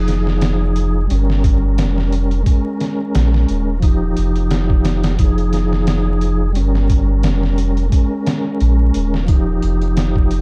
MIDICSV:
0, 0, Header, 1, 4, 480
1, 0, Start_track
1, 0, Key_signature, -4, "minor"
1, 0, Tempo, 681818
1, 1735, Time_signature, 4, 2, 24, 8
1, 7331, End_track
2, 0, Start_track
2, 0, Title_t, "Tonewheel organ"
2, 0, Program_c, 0, 16
2, 0, Note_on_c, 0, 53, 77
2, 0, Note_on_c, 0, 63, 68
2, 0, Note_on_c, 0, 68, 78
2, 722, Note_off_c, 0, 53, 0
2, 735, Note_off_c, 0, 63, 0
2, 748, Note_off_c, 0, 68, 0
2, 755, Note_on_c, 0, 55, 72
2, 781, Note_on_c, 0, 61, 66
2, 809, Note_on_c, 0, 70, 80
2, 1682, Note_off_c, 0, 55, 0
2, 1695, Note_off_c, 0, 61, 0
2, 1709, Note_off_c, 0, 70, 0
2, 1713, Note_on_c, 0, 56, 74
2, 1740, Note_on_c, 0, 61, 67
2, 1767, Note_on_c, 0, 70, 81
2, 2641, Note_off_c, 0, 56, 0
2, 2655, Note_off_c, 0, 61, 0
2, 2668, Note_off_c, 0, 70, 0
2, 2673, Note_on_c, 0, 53, 76
2, 2698, Note_on_c, 0, 63, 66
2, 2726, Note_on_c, 0, 67, 81
2, 3601, Note_off_c, 0, 53, 0
2, 3614, Note_off_c, 0, 63, 0
2, 3628, Note_off_c, 0, 67, 0
2, 3633, Note_on_c, 0, 53, 76
2, 3660, Note_on_c, 0, 63, 70
2, 3686, Note_on_c, 0, 68, 88
2, 4561, Note_off_c, 0, 53, 0
2, 4575, Note_off_c, 0, 63, 0
2, 4588, Note_off_c, 0, 68, 0
2, 4594, Note_on_c, 0, 55, 70
2, 4620, Note_on_c, 0, 61, 65
2, 4646, Note_on_c, 0, 70, 84
2, 5522, Note_off_c, 0, 55, 0
2, 5535, Note_off_c, 0, 61, 0
2, 5548, Note_off_c, 0, 70, 0
2, 5558, Note_on_c, 0, 56, 78
2, 5585, Note_on_c, 0, 61, 70
2, 5612, Note_on_c, 0, 70, 83
2, 6484, Note_off_c, 0, 56, 0
2, 6497, Note_off_c, 0, 61, 0
2, 6511, Note_off_c, 0, 70, 0
2, 6514, Note_on_c, 0, 53, 74
2, 6541, Note_on_c, 0, 63, 64
2, 6568, Note_on_c, 0, 67, 79
2, 7331, Note_off_c, 0, 53, 0
2, 7331, Note_off_c, 0, 63, 0
2, 7331, Note_off_c, 0, 67, 0
2, 7331, End_track
3, 0, Start_track
3, 0, Title_t, "Sub bass"
3, 0, Program_c, 1, 38
3, 0, Note_on_c, 1, 29, 90
3, 756, Note_off_c, 1, 29, 0
3, 777, Note_on_c, 1, 31, 90
3, 1257, Note_on_c, 1, 29, 96
3, 1268, Note_off_c, 1, 31, 0
3, 1715, Note_off_c, 1, 29, 0
3, 2218, Note_on_c, 1, 34, 84
3, 2431, Note_off_c, 1, 34, 0
3, 2460, Note_on_c, 1, 27, 88
3, 2917, Note_off_c, 1, 27, 0
3, 2941, Note_on_c, 1, 29, 74
3, 3637, Note_off_c, 1, 29, 0
3, 3657, Note_on_c, 1, 29, 96
3, 4622, Note_on_c, 1, 31, 90
3, 4632, Note_off_c, 1, 29, 0
3, 5102, Note_on_c, 1, 29, 98
3, 5112, Note_off_c, 1, 31, 0
3, 5558, Note_off_c, 1, 29, 0
3, 6061, Note_on_c, 1, 34, 84
3, 6272, Note_off_c, 1, 34, 0
3, 6302, Note_on_c, 1, 27, 85
3, 6758, Note_off_c, 1, 27, 0
3, 6781, Note_on_c, 1, 29, 81
3, 7331, Note_off_c, 1, 29, 0
3, 7331, End_track
4, 0, Start_track
4, 0, Title_t, "Drums"
4, 55, Note_on_c, 9, 42, 62
4, 59, Note_on_c, 9, 38, 35
4, 125, Note_off_c, 9, 42, 0
4, 129, Note_off_c, 9, 38, 0
4, 191, Note_on_c, 9, 38, 40
4, 261, Note_off_c, 9, 38, 0
4, 292, Note_on_c, 9, 42, 76
4, 296, Note_on_c, 9, 38, 109
4, 362, Note_off_c, 9, 42, 0
4, 367, Note_off_c, 9, 38, 0
4, 534, Note_on_c, 9, 42, 60
4, 604, Note_off_c, 9, 42, 0
4, 775, Note_on_c, 9, 42, 77
4, 846, Note_off_c, 9, 42, 0
4, 914, Note_on_c, 9, 38, 42
4, 984, Note_off_c, 9, 38, 0
4, 1014, Note_on_c, 9, 36, 92
4, 1015, Note_on_c, 9, 42, 66
4, 1084, Note_off_c, 9, 36, 0
4, 1085, Note_off_c, 9, 42, 0
4, 1254, Note_on_c, 9, 42, 76
4, 1258, Note_on_c, 9, 38, 106
4, 1324, Note_off_c, 9, 42, 0
4, 1328, Note_off_c, 9, 38, 0
4, 1394, Note_on_c, 9, 38, 35
4, 1465, Note_off_c, 9, 38, 0
4, 1496, Note_on_c, 9, 42, 62
4, 1566, Note_off_c, 9, 42, 0
4, 1628, Note_on_c, 9, 42, 37
4, 1698, Note_off_c, 9, 42, 0
4, 1734, Note_on_c, 9, 36, 105
4, 1734, Note_on_c, 9, 42, 80
4, 1804, Note_off_c, 9, 36, 0
4, 1804, Note_off_c, 9, 42, 0
4, 1974, Note_on_c, 9, 42, 59
4, 1978, Note_on_c, 9, 38, 46
4, 2045, Note_off_c, 9, 42, 0
4, 2049, Note_off_c, 9, 38, 0
4, 2215, Note_on_c, 9, 42, 82
4, 2219, Note_on_c, 9, 38, 105
4, 2285, Note_off_c, 9, 42, 0
4, 2290, Note_off_c, 9, 38, 0
4, 2352, Note_on_c, 9, 38, 45
4, 2423, Note_off_c, 9, 38, 0
4, 2453, Note_on_c, 9, 42, 60
4, 2524, Note_off_c, 9, 42, 0
4, 2693, Note_on_c, 9, 42, 77
4, 2694, Note_on_c, 9, 36, 96
4, 2763, Note_off_c, 9, 42, 0
4, 2764, Note_off_c, 9, 36, 0
4, 2933, Note_on_c, 9, 42, 65
4, 3004, Note_off_c, 9, 42, 0
4, 3067, Note_on_c, 9, 42, 38
4, 3137, Note_off_c, 9, 42, 0
4, 3172, Note_on_c, 9, 42, 85
4, 3176, Note_on_c, 9, 38, 103
4, 3242, Note_off_c, 9, 42, 0
4, 3246, Note_off_c, 9, 38, 0
4, 3308, Note_on_c, 9, 36, 86
4, 3378, Note_off_c, 9, 36, 0
4, 3412, Note_on_c, 9, 42, 73
4, 3416, Note_on_c, 9, 38, 94
4, 3482, Note_off_c, 9, 42, 0
4, 3486, Note_off_c, 9, 38, 0
4, 3545, Note_on_c, 9, 42, 73
4, 3549, Note_on_c, 9, 38, 93
4, 3615, Note_off_c, 9, 42, 0
4, 3619, Note_off_c, 9, 38, 0
4, 3651, Note_on_c, 9, 42, 87
4, 3654, Note_on_c, 9, 36, 102
4, 3721, Note_off_c, 9, 42, 0
4, 3724, Note_off_c, 9, 36, 0
4, 3787, Note_on_c, 9, 42, 41
4, 3857, Note_off_c, 9, 42, 0
4, 3891, Note_on_c, 9, 42, 63
4, 3895, Note_on_c, 9, 38, 35
4, 3962, Note_off_c, 9, 42, 0
4, 3966, Note_off_c, 9, 38, 0
4, 4031, Note_on_c, 9, 38, 45
4, 4102, Note_off_c, 9, 38, 0
4, 4133, Note_on_c, 9, 42, 81
4, 4137, Note_on_c, 9, 38, 106
4, 4203, Note_off_c, 9, 42, 0
4, 4207, Note_off_c, 9, 38, 0
4, 4374, Note_on_c, 9, 42, 57
4, 4444, Note_off_c, 9, 42, 0
4, 4613, Note_on_c, 9, 42, 79
4, 4683, Note_off_c, 9, 42, 0
4, 4752, Note_on_c, 9, 38, 45
4, 4823, Note_off_c, 9, 38, 0
4, 4855, Note_on_c, 9, 36, 94
4, 4855, Note_on_c, 9, 42, 69
4, 4925, Note_off_c, 9, 42, 0
4, 4926, Note_off_c, 9, 36, 0
4, 5092, Note_on_c, 9, 42, 83
4, 5097, Note_on_c, 9, 38, 113
4, 5163, Note_off_c, 9, 42, 0
4, 5167, Note_off_c, 9, 38, 0
4, 5235, Note_on_c, 9, 38, 34
4, 5305, Note_off_c, 9, 38, 0
4, 5336, Note_on_c, 9, 42, 64
4, 5407, Note_off_c, 9, 42, 0
4, 5471, Note_on_c, 9, 42, 41
4, 5541, Note_off_c, 9, 42, 0
4, 5577, Note_on_c, 9, 36, 103
4, 5577, Note_on_c, 9, 42, 82
4, 5647, Note_off_c, 9, 36, 0
4, 5648, Note_off_c, 9, 42, 0
4, 5818, Note_on_c, 9, 42, 70
4, 5823, Note_on_c, 9, 38, 100
4, 5889, Note_off_c, 9, 42, 0
4, 5893, Note_off_c, 9, 38, 0
4, 6057, Note_on_c, 9, 42, 58
4, 6128, Note_off_c, 9, 42, 0
4, 6295, Note_on_c, 9, 42, 74
4, 6365, Note_off_c, 9, 42, 0
4, 6435, Note_on_c, 9, 38, 42
4, 6506, Note_off_c, 9, 38, 0
4, 6534, Note_on_c, 9, 42, 81
4, 6536, Note_on_c, 9, 36, 101
4, 6605, Note_off_c, 9, 42, 0
4, 6606, Note_off_c, 9, 36, 0
4, 6776, Note_on_c, 9, 42, 66
4, 6846, Note_off_c, 9, 42, 0
4, 6910, Note_on_c, 9, 42, 41
4, 6981, Note_off_c, 9, 42, 0
4, 7017, Note_on_c, 9, 42, 80
4, 7021, Note_on_c, 9, 38, 100
4, 7087, Note_off_c, 9, 42, 0
4, 7091, Note_off_c, 9, 38, 0
4, 7150, Note_on_c, 9, 36, 85
4, 7220, Note_off_c, 9, 36, 0
4, 7256, Note_on_c, 9, 42, 59
4, 7326, Note_off_c, 9, 42, 0
4, 7331, End_track
0, 0, End_of_file